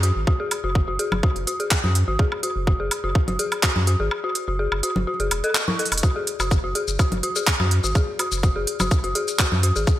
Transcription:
0.00 0.12 F#2 medium
0.00 0.09 F#4 medium
0.00 closed hi-hat medium
0.16 0.25 G#1 medium
0.27 0.31 F#4 medium
0.27 kick loud
0.40 0.45 G#4 medium
0.51 closed hi-hat medium
0.51 high woodblock medium
0.51 low woodblock soft
0.64 0.84 F#1 loud
0.64 0.69 F#4 medium
0.75 kick loud
0.88 0.97 F#1 medium
0.88 0.91 F#4 medium
0.99 1.05 G#4 medium
0.99 closed hi-hat medium
1.12 1.21 F#1 medium
1.12 low conga medium
1.12 high woodblock medium
1.12 low woodblock soft
1.23 1.29 F#4 medium
1.23 kick loud
1.36 1.45 F#1 medium
1.36 closed hi-hat soft
1.47 1.51 F#4 medium
1.47 closed hi-hat medium
1.60 1.65 G#4 medium
1.60 closed hi-hat soft
1.71 kick loud
1.71 clap loud
1.71 high woodblock medium
1.71 low woodblock soft
1.84 2.04 F#2 medium
1.84 1.89 F#4 medium
1.84 low conga medium
1.95 closed hi-hat medium
2.08 2.17 G#1 medium
2.08 2.11 F#4 medium
2.19 2.25 G#4 medium
2.19 kick loud
2.32 high woodblock medium
2.32 low woodblock soft
2.43 2.49 F#4 medium
2.43 closed hi-hat medium
2.56 2.76 F#1 loud
2.67 2.71 F#4 medium
2.67 kick loud
2.80 2.89 F#1 medium
2.80 2.85 G#4 medium
2.91 closed hi-hat medium
2.91 high woodblock medium
2.91 low woodblock soft
3.04 3.13 F#1 medium
3.04 3.09 F#4 medium
3.15 kick loud
3.28 3.37 F#1 medium
3.28 3.31 F#4 medium
3.28 closed hi-hat soft
3.28 low conga medium
3.39 3.45 G#4 medium
3.39 closed hi-hat medium
3.52 closed hi-hat soft
3.52 high woodblock medium
3.52 low woodblock soft
3.63 3.69 F#4 medium
3.63 kick loud
3.63 clap loud
3.76 3.96 F#2 medium
3.76 low conga medium
3.87 3.91 F#4 medium
3.87 closed hi-hat medium
4.00 4.09 G#1 medium
4.00 4.05 G#4 medium
4.11 high woodblock medium
4.11 low woodblock soft
4.24 4.29 F#4 medium
4.35 closed hi-hat medium
4.48 4.68 F#1 loud
4.48 4.51 F#4 medium
4.59 4.65 G#4 medium
4.72 4.81 F#1 medium
4.72 high woodblock medium
4.72 low woodblock soft
4.83 4.89 F#4 medium
4.83 closed hi-hat medium
4.96 5.05 F#1 medium
4.96 low conga medium
5.07 5.11 F#4 medium
5.20 5.29 F#1 medium
5.20 5.25 G#4 medium
5.20 closed hi-hat soft
5.31 5.42 E1 medium
5.31 closed hi-hat medium
5.31 high woodblock medium
5.31 low woodblock soft
5.44 5.49 A4 loud
5.44 closed hi-hat soft
5.55 clap loud
5.68 5.73 E4 medium
5.68 low conga medium
5.79 5.83 A4 medium
5.79 closed hi-hat medium
5.86 closed hi-hat medium
5.92 6.01 E1 medium
5.92 closed hi-hat medium
5.92 high woodblock medium
5.92 low woodblock soft
5.98 closed hi-hat medium
6.03 6.07 F#4 medium
6.03 kick loud
6.03 shaker soft
6.16 6.21 G#4 medium
6.27 closed hi-hat loud
6.40 6.60 F#1 loud
6.40 6.45 F#4 medium
6.40 high woodblock medium
6.40 low woodblock soft
6.40 shaker medium
6.51 kick loud
6.51 shaker soft
6.64 6.73 F#1 medium
6.64 6.67 F#4 medium
6.75 6.81 G#4 medium
6.75 closed hi-hat medium
6.88 6.97 F#1 medium
6.88 shaker medium
6.99 7.05 F#4 medium
6.99 kick loud
6.99 high woodblock medium
6.99 low woodblock soft
6.99 shaker soft
7.12 7.21 F#1 medium
7.12 closed hi-hat soft
7.12 low conga medium
7.23 7.27 F#4 medium
7.23 closed hi-hat medium
7.36 7.41 G#4 medium
7.36 closed hi-hat soft
7.36 shaker medium
7.47 kick loud
7.47 clap loud
7.47 shaker soft
7.60 7.80 F#2 medium
7.60 7.65 F#4 medium
7.60 low conga medium
7.60 high woodblock medium
7.60 low woodblock soft
7.71 closed hi-hat medium
7.84 7.94 G#1 medium
7.84 7.87 F#4 medium
7.84 shaker medium
7.95 8.01 G#4 medium
7.95 kick loud
7.95 shaker soft
8.19 8.25 F#4 medium
8.19 closed hi-hat medium
8.19 high woodblock medium
8.19 low woodblock soft
8.32 8.52 F#1 loud
8.32 shaker medium
8.43 8.47 F#4 medium
8.43 kick loud
8.43 shaker soft
8.56 8.65 F#1 medium
8.56 8.61 G#4 medium
8.67 closed hi-hat medium
8.80 8.89 F#1 medium
8.80 8.85 F#4 medium
8.80 low conga medium
8.80 high woodblock medium
8.80 low woodblock soft
8.80 shaker medium
8.91 kick loud
8.91 shaker soft
9.04 9.14 F#1 medium
9.04 9.07 F#4 medium
9.04 closed hi-hat soft
9.15 9.21 G#4 medium
9.15 closed hi-hat loud
9.28 closed hi-hat soft
9.28 shaker medium
9.39 9.45 F#4 medium
9.39 kick loud
9.39 clap loud
9.39 high woodblock medium
9.39 low woodblock soft
9.39 shaker soft
9.52 9.72 F#2 medium
9.52 low conga medium
9.63 9.67 F#4 medium
9.63 closed hi-hat medium
9.76 9.85 G#1 medium
9.76 9.81 G#4 medium
9.76 shaker medium
9.87 kick loud
9.87 shaker soft

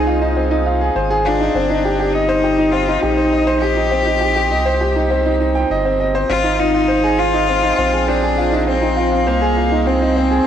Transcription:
0.00 0.90 C2 medium
0.00 0.37 C4 medium
0.00 0.22 D#4 medium
0.00 0.66 D#4 loud
0.00 0.07 F4 medium
0.00 0.81 G#4 loud
0.00 0.96 C5 medium
0.07 0.21 F4 medium
0.22 0.35 D#4 medium
0.37 0.50 C4 medium
0.51 0.65 D#4 medium
0.66 0.80 F4 medium
0.81 0.89 G#4 medium
0.95 1.49 G#1 loud
0.95 1.10 C5 medium
1.10 1.24 G#4 loud
1.25 2.14 D4 loud
1.25 1.39 F4 medium
1.40 1.54 D#4 medium
1.54 2.97 G1 loud
1.54 1.69 C4 medium
1.70 1.84 D#4 medium
1.85 1.98 G4 medium
2.00 2.13 G4 medium
2.13 2.73 D#4 loud
2.13 2.28 D#5 medium
2.29 2.43 C5 loud
2.44 2.58 G4 medium
2.58 2.73 D#4 medium
2.72 2.87 C4 medium
2.72 3.02 F4 loud
2.88 3.02 D#4 medium
3.01 4.53 A#1 medium
3.01 3.63 D#4 loud
3.01 3.17 G4 medium
3.17 3.26 C5 medium
3.32 3.47 D#5 medium
3.47 3.61 C5 loud
3.61 5.40 G4 loud
3.61 3.76 G4 medium
3.76 3.91 D#4 medium
3.91 4.06 C4 medium
4.07 4.21 D#4 medium
4.21 4.35 G4 medium
4.36 4.50 G4 medium
4.51 5.64 C2 medium
4.51 4.66 D#5 medium
4.66 4.80 C5 medium
4.81 4.95 G4 medium
4.96 5.10 D#4 medium
5.11 5.25 C4 medium
5.26 5.39 D#4 medium
5.40 5.55 D#4 medium
5.55 5.69 G5 medium
5.70 6.24 G1 loud
5.70 5.79 D#5 medium
5.85 5.99 C4 medium
6.00 6.14 D#5 medium
6.15 6.29 C5 loud
6.29 7.72 G#1 loud
6.29 6.44 C4 medium
6.29 6.62 F4 loud
6.44 6.58 D#4 medium
6.59 7.20 D#4 loud
6.59 6.72 F4 medium
6.74 6.88 F4 medium
6.88 7.03 C5 medium
7.04 7.18 G#4 loud
7.19 7.33 F4 medium
7.19 8.10 F4 loud
7.34 7.48 D#4 medium
7.49 7.63 C4 medium
7.63 7.78 D#4 medium
7.78 9.28 A#1 medium
7.78 7.92 C4 medium
7.93 8.02 G#4 medium
8.08 8.68 D4 loud
8.08 8.22 C5 medium
8.23 8.37 G#4 loud
8.37 8.52 F4 medium
8.52 8.67 D#4 medium
8.67 8.81 C4 medium
8.67 9.29 C4 loud
8.82 8.96 D#4 medium
8.97 9.11 F4 medium
9.12 9.26 F4 medium
9.26 10.40 C2 medium
9.26 9.88 A#3 loud
9.26 9.41 C5 medium
9.42 9.56 G#4 loud
9.57 9.71 F4 medium
9.72 9.86 D#4 medium
9.87 10.01 C4 medium
9.87 10.47 C4 loud
10.02 10.16 D#4 medium
10.17 10.31 C4 loud
10.31 10.39 G#4 medium

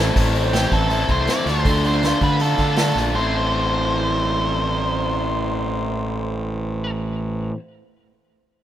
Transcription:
0.00 0.15 A1 medium
0.00 0.14 A2 medium
0.00 0.15 E3 medium
0.00 0.15 A3 medium
0.00 0.16 C4 medium
0.00 0.15 E4 medium
0.00 0.14 A4 medium
0.00 0.16 A4 medium
0.00 0.16 C5 medium
0.00 0.16 E5 medium
0.00 0.16 C6 medium
0.15 0.65 A1 medium
0.15 0.51 A2 medium
0.15 0.52 E3 medium
0.15 0.54 A3 medium
0.15 0.54 C4 medium
0.15 0.54 E4 medium
0.15 kick loud
0.15 open hi-hat medium
0.35 1.26 C4 medium
0.35 open hi-hat soft
0.52 1.09 A2 medium
0.52 0.88 E3 loud
0.52 0.90 A3 medium
0.52 0.90 C4 medium
0.52 0.91 E4 medium
0.52 0.73 G4 medium
0.52 snare medium
0.52 open hi-hat medium
0.72 1.05 A1 medium
0.72 1.46 E3 medium
0.72 1.07 A4 medium
0.72 kick medium
0.72 open hi-hat soft
0.90 1.26 E3 medium
0.90 1.10 A3 medium
0.90 1.08 C4 medium
0.90 1.07 E4 medium
0.90 open hi-hat medium
1.08 1.26 C2 medium
1.08 1.28 A3 soft
1.08 1.28 C4 medium
1.08 1.29 E4 medium
1.08 2.59 A4 medium
1.08 1.30 C5 medium
1.08 kick medium
1.08 open hi-hat soft
1.27 1.45 E3 medium
1.27 1.48 A3 medium
1.27 1.46 C4 medium
1.27 1.46 E4 medium
1.27 1.48 D5 medium
1.27 snare loud
1.27 open hi-hat medium
1.46 2.12 D2 medium
1.46 1.64 D3 medium
1.46 1.65 A3 medium
1.46 1.66 D4 medium
1.46 1.67 F4 medium
1.46 1.83 C5 medium
1.46 snare soft
1.46 open hi-hat soft
1.65 2.01 D3 medium
1.65 2.02 A3 medium
1.65 2.03 D4 medium
1.65 2.04 F4 medium
1.65 kick medium
1.65 open hi-hat medium
1.84 2.76 D4 medium
1.84 2.20 C5 medium
1.84 open hi-hat soft
2.03 2.38 D3 medium
2.03 2.40 A3 medium
2.03 2.41 D4 medium
2.03 2.41 F4 medium
2.03 snare medium
2.03 open hi-hat medium
2.21 2.55 D3 medium
2.21 2.95 D3 medium
2.21 2.41 B4 medium
2.21 kick medium
2.21 open hi-hat soft
2.40 2.75 D3 medium
2.40 2.60 A3 medium
2.40 2.58 D4 medium
2.40 2.57 F4 medium
2.40 2.97 A4 medium
2.40 open hi-hat medium
2.58 2.92 D3 medium
2.58 2.76 A3 medium
2.58 2.77 D4 medium
2.58 2.78 F4 medium
2.58 3.15 A4 medium
2.58 kick medium
2.58 open hi-hat soft
2.76 3.13 D3 medium
2.76 2.98 A3 medium
2.76 2.96 D4 medium
2.76 2.95 F4 medium
2.76 snare loud
2.76 open hi-hat medium
2.95 3.12 A#1 medium
2.95 3.14 D3 medium
2.95 3.15 A3 soft
2.95 3.15 D4 medium
2.95 3.14 F4 medium
2.95 snare soft
2.95 open hi-hat soft
3.14 7.50 A1 medium
3.14 7.56 A2 medium
3.14 7.57 E3 medium
3.14 7.57 A3 medium
3.14 7.57 A4 medium
3.14 6.91 C5 medium
3.18 7.59 C4 medium
3.18 7.59 E4 medium

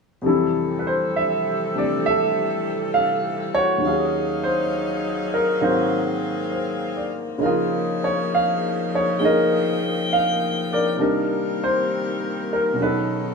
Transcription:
0.22 3.82 F2 soft
0.22 1.73 C3 soft
0.22 3.80 C3 medium
0.22 3.80 E3 medium
0.22 3.83 G3 soft
0.22 3.80 G3 medium
0.22 3.80 A4 medium
0.26 3.84 E3 soft
0.26 2.02 E4 medium
0.26 2.08 A4 soft
0.79 0.87 B4 medium
0.87 1.13 C5 medium
1.16 1.78 E5 medium
1.74 3.83 C3 soft
1.74 3.83 A3 soft
1.74 3.84 D4 soft
1.74 2.04 D5 medium
2.06 3.82 A4 medium
2.06 2.97 E5 medium
2.94 3.50 F5 medium
3.55 5.31 F#4 medium
3.55 4.40 C#5 loud
3.78 5.59 D#2 soft
3.78 5.60 D#3 soft
3.83 5.60 F#3 soft
3.83 7.25 F#3 medium
3.83 5.63 C#4 soft
3.83 5.61 C#4 medium
3.83 5.61 D#4 medium
3.83 7.25 G#4 medium
3.83 5.61 F5 medium
3.87 5.65 G#4 soft
3.87 5.61 F5 soft
4.44 5.36 C5 medium
5.34 5.60 A#4 medium
5.61 7.40 G#2 soft
5.61 7.41 D#3 soft
5.61 7.40 F#3 soft
5.61 12.75 A#3 medium
5.61 7.41 C4 soft
5.61 7.25 C4 medium
5.61 7.41 A#4 medium
5.61 6.50 C5 medium
5.61 7.41 F5 soft
5.61 7.25 F5 medium
5.67 7.39 F#4 medium
6.52 7.22 C5 soft
6.96 7.59 D5 soft
7.38 10.97 C#3 soft
7.38 10.96 C#3 medium
7.38 9.18 G#3 soft
7.38 9.19 D#4 soft
7.38 7.44 F4 soft
7.38 9.18 G#4 medium
7.42 10.96 F3 medium
7.42 10.96 D#4 medium
7.42 9.18 F4 medium
7.42 9.24 A#4 soft
8.04 8.30 C#5 medium
8.35 8.89 F5 medium
8.95 9.23 C#5 medium
9.19 10.98 G#3 soft
9.19 10.99 A#3 soft
9.19 10.99 D#4 soft
9.19 11.00 G#4 soft
9.19 10.97 G5 medium
9.25 10.72 A#4 medium
9.25 10.14 D#5 medium
10.13 10.73 F5 medium
10.73 11.00 A#4 medium
10.73 11.57 D5 medium
10.96 12.77 C3 soft
10.96 13.34 D#3 medium
10.96 12.78 G3 soft
10.96 12.76 G3 medium
10.96 12.76 C4 medium
10.96 12.78 D4 soft
10.96 12.76 A#4 medium
11.01 12.79 D#4 soft
11.01 12.51 A#4 medium
11.64 12.54 C5 medium
12.53 12.81 A#4 medium
12.73 13.34 B2 soft
12.73 13.34 F#3 soft
12.78 13.34 C#3 medium
12.78 13.34 F#3 medium
12.78 13.34 B3 medium
12.78 13.34 C#4 soft
12.78 13.34 D#4 soft
12.78 13.34 A4 medium
12.78 13.34 B4 medium
12.84 13.34 A4 soft

